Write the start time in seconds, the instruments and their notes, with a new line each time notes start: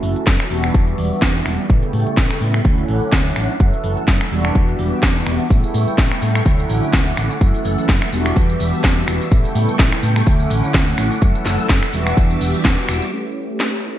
Already playing: analog polysynth E3 F#3 A3 C#4 E4, string machine F#4 E5 A5
0.03 fingered electric bass F#1, open hi-hat
0.16 muted fingered electric bass stroke, closed hi-hat
0.27 fingered electric bass F#2, kick, snare, closed hi-hat
0.40 finger snap, closed hi-hat
0.50 fingered electric bass E1, analog polysynth E3 G3 B3 D4 F#4, string machine G3 D6, open hi-hat
0.64 finger snap
0.74 fingered electric bass E2, kick, closed hi-hat
0.88 closed hi-hat
0.98 fingered electric bass E1, open hi-hat
1.22 fingered electric bass E2, kick, snare, closed hi-hat
1.35 closed hi-hat
1.46 fingered electric bass E1, finger snap, open hi-hat
1.69 fingered electric bass A1, analog polysynth C#3 G3 A3 B3 E4, string machine A4 G5 C#6, kick, closed hi-hat
1.83 closed hi-hat
1.93 fingered electric bass A2, open hi-hat
2.07 muted fingered electric bass stroke, closed hi-hat
2.17 fingered electric bass A1, kick, snare, closed hi-hat
2.31 finger snap, closed hi-hat
2.41 fingered electric bass A2, open hi-hat
2.54 finger snap
2.64 fingered electric bass D2, analog polysynth D3 A3 C#4 E4, string machine C#4 F#5 D6, kick, closed hi-hat
2.78 closed hi-hat
2.89 fingered electric bass A1, open hi-hat
3.02 muted fingered electric bass stroke
3.12 fingered electric bass D2, kick, snare, closed hi-hat
3.26 closed hi-hat
3.36 fingered electric bass A1, finger snap, open hi-hat
3.59 fingered electric bass F#2, analog polysynth E3 F#3 A3 C#4 E4, string machine A4 E6, kick, closed hi-hat
3.73 closed hi-hat
3.84 fingered electric bass F#1, open hi-hat
3.97 closed hi-hat
4.08 fingered electric bass F#2, kick, snare, closed hi-hat
4.21 finger snap, closed hi-hat
4.31 fingered electric bass E1, analog polysynth E3 G3 B3 D4 F#4, string machine G3 E5 D6, open hi-hat
4.45 finger snap
4.55 fingered electric bass E2, kick, closed hi-hat
4.69 closed hi-hat
4.79 fingered electric bass E1, open hi-hat
5.03 fingered electric bass E2, kick, snare, closed hi-hat
5.16 closed hi-hat
5.27 fingered electric bass E1, finger snap, open hi-hat
5.40 closed hi-hat
5.50 fingered electric bass A1, analog polysynth C#3 G3 A3 B3 E4, string machine A4 G5 C#6, kick, closed hi-hat, tambourine
5.64 closed hi-hat, tambourine, shaker
5.74 fingered electric bass A2, open hi-hat, tambourine
5.87 muted fingered electric bass stroke, closed hi-hat, tambourine, shaker
5.98 fingered electric bass A1, kick, snare, closed hi-hat, tambourine
6.12 finger snap, closed hi-hat
6.22 fingered electric bass A2, open hi-hat, tambourine
6.35 finger snap, tambourine
6.45 fingered electric bass D2, analog polysynth D3 F#3 A3 C#4 E4, string machine C#4 F#5 D6, kick, closed hi-hat, tambourine
6.59 closed hi-hat, tambourine
6.69 fingered electric bass A1, open hi-hat, tambourine, shaker
6.83 tambourine
6.93 fingered electric bass D2, kick, snare, closed hi-hat, tambourine
7.07 closed hi-hat
7.17 fingered electric bass A1, finger snap, open hi-hat, tambourine
7.31 tambourine
7.40 fingered electric bass F#2, analog polysynth E3 F#3 A3 C#4 E4, string machine A4 E6, kick, closed hi-hat, tambourine
7.54 closed hi-hat, tambourine, shaker
7.64 fingered electric bass F#1, open hi-hat, tambourine, shaker
7.78 closed hi-hat, tambourine
7.89 fingered electric bass F#2, kick, snare, closed hi-hat, tambourine
8.02 finger snap, closed hi-hat
8.12 fingered electric bass E1, analog polysynth E3 G3 B3 D4 F#4, string machine G3 E5 D6, open hi-hat, tambourine
8.26 finger snap, tambourine
8.36 fingered electric bass E2, kick, closed hi-hat, tambourine
8.50 closed hi-hat, tambourine
8.60 fingered electric bass E1, open hi-hat, tambourine, shaker
8.73 tambourine, shaker
8.84 fingered electric bass E2, kick, snare, closed hi-hat, tambourine
8.97 closed hi-hat
9.08 fingered electric bass E1, finger snap, open hi-hat, tambourine, shaker
9.21 tambourine, shaker
9.31 fingered electric bass A1, analog polysynth C#3 G3 A3 B3 E4, string machine A4 G5 C#6, kick, closed hi-hat, tambourine
9.45 closed hi-hat, tambourine, shaker
9.55 fingered electric bass A2, open hi-hat, tambourine, shaker
9.69 muted fingered electric bass stroke, closed hi-hat, tambourine, shaker
9.79 fingered electric bass A1, kick, snare, closed hi-hat, tambourine
9.93 finger snap, closed hi-hat
10.03 fingered electric bass A2, open hi-hat, tambourine, shaker
10.16 finger snap, tambourine
10.26 fingered electric bass D2, analog polysynth D3 F#3 A3 C#4 E4, string machine C#4 F#5 D6, kick, closed hi-hat, tambourine
10.40 closed hi-hat, tambourine, shaker
10.50 fingered electric bass A1, open hi-hat, tambourine, shaker
10.63 muted fingered electric bass stroke, tambourine, shaker
10.74 fingered electric bass D2, kick, snare, closed hi-hat, tambourine
10.88 closed hi-hat
10.98 fingered electric bass A1, finger snap, open hi-hat, tambourine, shaker
11.11 tambourine, shaker
11.21 fingered electric bass F#2, analog polysynth E3 F#3 A3 C#4 E4, string machine A4 E6, kick, closed hi-hat, tambourine, shaker
11.35 closed hi-hat, tambourine, shaker
11.46 fingered electric bass F#1, snare, open hi-hat, tambourine, shaker
11.59 muted fingered electric bass stroke, closed hi-hat, tambourine, shaker
11.69 fingered electric bass F#2, kick, snare, closed hi-hat, tambourine
11.83 finger snap, closed hi-hat, tambourine
11.93 fingered electric bass E1, analog polysynth E3 G3 B3 D4 F#4, string machine G3 E5 D6, open hi-hat, tambourine, shaker
12.07 finger snap, closed hi-hat, tambourine, shaker
12.17 fingered electric bass E2, kick, closed hi-hat, tambourine
12.30 closed hi-hat, tambourine, shaker
12.41 fingered electric bass E1, open hi-hat, tambourine, shaker
12.54 muted fingered electric bass stroke, closed hi-hat, tambourine, shaker
12.65 fingered electric bass E2, kick, snare, closed hi-hat, tambourine
12.78 closed hi-hat, tambourine
12.89 fingered electric bass E1, finger snap, open hi-hat, tambourine, shaker
13.02 closed hi-hat, tambourine
13.12 analog polysynth A3 C#4 E4 G4 B4, string machine G4 C#5 A5
13.60 snare